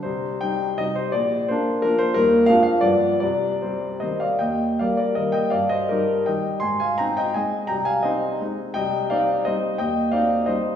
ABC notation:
X:1
M:3/4
L:1/8
Q:1/4=168
K:Cm
V:1 name="Grand piano"
c2 g2 e c | d2 c2 B c | B2 f f d2 | d2 c2 [ce] [df] |
[K:Eb] [eg]2 [df] [Bd] [Be] [eg] | [df] [ce] [GB]2 [eg]2 | [ac'] [fa] [gb] [eg] [ea]2 | [gb] [fa] [ce]2 z2 |
[K:Cm] [eg]2 [df]2 [ce]2 | [eg]2 [df]2 [ce]2 |]
V:2 name="Grand piano" clef=bass
C,,2 [G,E]2 [C,G,E]2 | B,,,2 [B,D]2 [F,B,D]2 | [E,,G,B,E]2 [F,,F,A,D]2 [G,,F,G,=B,]2 | C,,2 [G,C]2 [E,G,C]2 |
[K:Eb] E,,2 [G,B,]2 [E,G,B,]2 | G,,2 [G,E]2 [E,G,E]2 | A,,2 [CE]2 [A,CE]2 | C,,2 [CE]2 [A,CE]2 |
[K:Cm] C,,2 [CE]2 [G,CE]2 | E,,2 [CE]2 [G,CE]2 |]